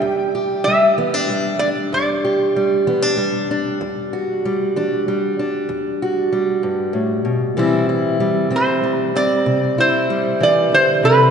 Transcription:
<<
  \new Staff \with { instrumentName = "Resonator guitar played with a steel bar" } { \time 12/8 \key e \minor \tempo 4. = 64 g''4 e''4. d''8 d''2 r4 | r1. | r4. c''4 d''4 c''4 d''8 c''8 b'8 | }
  \new Staff \with { instrumentName = "Steel-string acoustic guitar" } { \clef bass \time 12/8 \key e \minor << { g8 g'8 g8 b16 d'16 g8 d'4 g'8 g8 b16 d'16 g8 d'8 | r8 fis'8 g8 d'8 g8 d'4 fis'8 g2 | <e g c' e'>8 e'8 g8 c'8 g8 c'4 e'8 g2 | } \\ { e,4 r8 e4 r8 e,4 r8 e4 r8 | e,4 r8 e4 r8 e,4 r8 g,8 a,8 b,8 | c4 r8 e4 r8 c4 r8 e8 d8 c8 | } >> }
>>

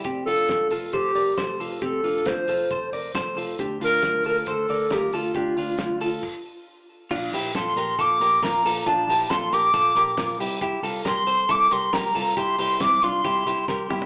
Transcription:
<<
  \new Staff \with { instrumentName = "Soft synth lead" } { \time 4/4 \key bes \lydian \tempo 4 = 137 r8 a'4 r8 g'4. r8 | a'8. a'16 c''4. r4. | r8 bes'4 bes'8 a'4 g'8 f'8~ | f'2. r4 |
r4 c'''4 d'''4 bes''4 | a''4 c'''8 d'''2 r8 | r4 c'''4 d'''8 c'''8 bes''4 | c'''4 d'''8 c'''2 r8 | }
  \new Staff \with { instrumentName = "Clean electric guitar" } { \time 4/4 \key bes \lydian <c' g'>8 <d' f'>4 <f' a'>8 <a' c''>8 <bes' d''>8 <a' c''>8 <f' a'>8 | <c' g'>8 <d' f'>4 <f' a'>8 <a' c''>8 <bes' d''>8 <a' c''>8 <f' a'>8 | <d' g'>8 <d' f'>4 <f' a'>8 <a' c''>8 <bes' d''>8 <f' bes'>8 <f' a'>8 | <d' g'>8 <d' f'>4 <f' a'>8 r2 |
<d' f'>8 <e' g'>8 <f' a'>8 <g' bes'>8 <f' a'>8 <g' bes'>8 <f' bes'>8 <f' a'>8 | <d' f'>8 <e' g'>8 <f' a'>8 <g' bes'>8 <f' a'>8 <g' bes'>8 <f' bes'>8 <e' g'>8 | <e' g'>8 <f' a'>8 <g' bes'>8 <a' c''>8 <e' a'>8 <g' bes'>8 <g' bes'>8 <f' a'>8 | <e' g'>8 <e' g'>8 <c' e'>8 <d' f'>8 <e' g'>8 <e' g'>8 <g' bes'>8 <e' g'>8 | }
  \new Staff \with { instrumentName = "Picked electric bass" } { \clef bass \time 4/4 \key bes \lydian f,,8 f,,8 f,,8 f,,8 f,,8 f,,8 f,,8 f,,8 | f,,8 f,,8 f,,8 f,,8 f,,8 f,,8 f,,8 f,,8 | d,8 d,8 d,8 d,8 d,8 d,8 d,8 d,8 | d,8 d,8 d,8 d,8 r2 |
bes,,8 bes,,8 bes,,8 bes,,8 bes,,8 bes,,8 bes,,8 bes,,8 | bes,,8 bes,,8 bes,,8 bes,,8 bes,,8 bes,,8 bes,,8 c,8~ | c,8 c,8 c,8 c,8 c,8 c,8 c,8 c,8 | c,8 c,8 c,8 c,8 c,8 c,8 c,8 c,8 | }
  \new DrumStaff \with { instrumentName = "Drums" } \drummode { \time 4/4 <hh bd>8 hho8 <hh bd sn>8 hho8 <hh bd>8 hho8 <hh bd sn>8 hho8 | <hh bd>8 hho8 <hh bd sn>8 hho8 <hh bd>8 hho8 <hh bd sn>8 hho8 | <hh bd>8 hho8 <hh bd sn>8 hho8 <hh bd>8 hho8 <hh bd sn>8 hho8 | <hh bd>8 hho8 <hh bd sn>8 hho8 <cymc bd>4 r4 |
<cymc bd>8 <hho hhp>8 <hho hhp bd sn>8 <hho hhp>8 <hho hhp bd>8 <hho hhp>8 <hho hhp bd sn>8 <hho hhp>8 | <hho hhp bd>8 <hho hhp>8 <hho hhp bd sn>8 <hho hhp>8 <hho hhp bd>8 <hho hhp>8 <hho hhp bd sn>8 <hho hhp>8 | <hho hhp bd>8 <hho hhp>8 <hho hhp bd sn>8 <hho hhp>8 <hho hhp bd>8 <hho hhp>8 <hho hhp bd sn>8 <hho hhp>8 | <hho hhp bd>8 <hho hhp>8 <hho hhp bd sn>8 <hho hhp>8 <hho hhp bd>8 <hho hhp>8 <bd sn>8 toml16 tomfh16 | }
>>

